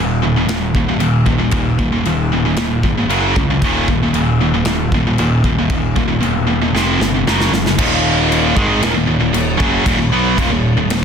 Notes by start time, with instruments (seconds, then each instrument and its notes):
Already playing: picked electric bass D#1, distorted electric guitar D#2
0.00 distorted electric guitar A#2
0.22 distorted electric guitar D#2 A#2
0.36 distorted electric guitar D#2 A#2
0.47 picked electric bass D#1, distorted electric guitar D#2 A#2, snare, china
0.74 picked electric bass D#1, distorted electric guitar D#2 A#2, kick
0.88 distorted electric guitar D#2 A#2
0.99 picked electric bass D#1, distorted electric guitar D#2 A#2, china
1.25 picked electric bass D#1, distorted electric guitar D#2 A#2, kick
1.39 distorted electric guitar D#2 A#2
1.51 picked electric bass D#1, distorted electric guitar D#2 A#2, kick, china
1.79 picked electric bass D#1, distorted electric guitar D#2 A#2, kick
1.92 distorted electric guitar D#2 A#2
2.04 picked electric bass D#1, distorted electric guitar D#2 A#2, china
2.32 distorted electric guitar D#2 A#2
2.45 distorted electric guitar D#2 A#2
2.57 picked electric bass D#1, distorted electric guitar D#2 A#2, snare, china
2.82 picked electric bass G#1, distorted electric guitar D#2 A#2, kick
2.98 distorted electric guitar D#2 A#2
3.08 picked electric bass F#1, distorted electric guitar F#2 C#3 F#3, china
3.36 picked electric bass C#2, distorted electric guitar F#2 C#3, kick
3.50 distorted electric guitar F#2 C#3
3.61 picked electric bass D#1, distorted electric guitar D#2 A#2, kick, china
3.65 distorted electric guitar D#3
3.88 picked electric bass D#1, distorted electric guitar D#2 A#2, kick
4.03 distorted electric guitar D#2 A#2
4.13 picked electric bass D#1, distorted electric guitar D#2 A#2, china
4.41 distorted electric guitar D#2 A#2
4.54 distorted electric guitar D#2 A#2
4.64 picked electric bass D#1, distorted electric guitar D#2 A#2, snare, china
4.92 picked electric bass D#1, distorted electric guitar D#2 A#2, kick
5.07 distorted electric guitar D#2 A#2
5.18 picked electric bass D#1, distorted electric guitar D#2 A#2, china
5.43 picked electric bass D#1, distorted electric guitar D#2 A#2, kick
5.58 distorted electric guitar D#2 A#2
5.69 picked electric bass D#1, distorted electric guitar D#2 A#2, kick, china
5.96 picked electric bass D#1, distorted electric guitar D#2 A#2, kick
6.08 distorted electric guitar D#2 A#2
6.21 picked electric bass E1, distorted electric guitar D#2 A#2, china
6.47 distorted electric guitar D#2 A#2
6.62 distorted electric guitar D#2 A#2
6.73 picked electric bass F1, distorted electric guitar F2 C3 F3, snare
7.00 picked electric bass G1, distorted electric guitar F2 C3, snare
7.14 distorted electric guitar F2 C3
7.27 picked electric bass F#1, distorted electric guitar F#2 C#3 F#3, snare
7.40 snare
7.51 picked electric bass F#1, distorted electric guitar F#2 C#3, snare
7.66 distorted electric guitar F#2 C#3, snare
7.78 picked electric bass D#1, distorted electric guitar D#2 A#2 D#3, kick, crash
8.32 crash
8.56 picked electric bass G#1, distorted electric guitar G#2 D#3 G#3, kick
8.81 picked electric bass D#1, distorted electric guitar D#2 A#2, snare, crash
8.96 picked electric bass D#1, distorted electric guitar D#2 A#2
9.06 picked electric bass D#1, distorted electric guitar D#2 A#2
9.20 picked electric bass D#1, distorted electric guitar D#2 A#2
9.33 picked electric bass D#1, distorted electric guitar D#2 A#2, crash
9.58 picked electric bass F#1, distorted electric guitar F#2 C#3 F#3, kick
9.86 picked electric bass D#1, distorted electric guitar D#2 A#2, kick, crash
9.97 picked electric bass D#1, distorted electric guitar D#2 A#2
10.09 picked electric bass B1, distorted electric guitar B2 F#3 B3
10.37 picked electric bass D#1, distorted electric guitar D#2 A#2, kick, crash
10.48 picked electric bass D#1, distorted electric guitar D#2 A#2
10.75 picked electric bass D#1, distorted electric guitar D#2 A#2
10.87 picked electric bass D#1, distorted electric guitar D#2, crash
10.91 distorted electric guitar A#2, snare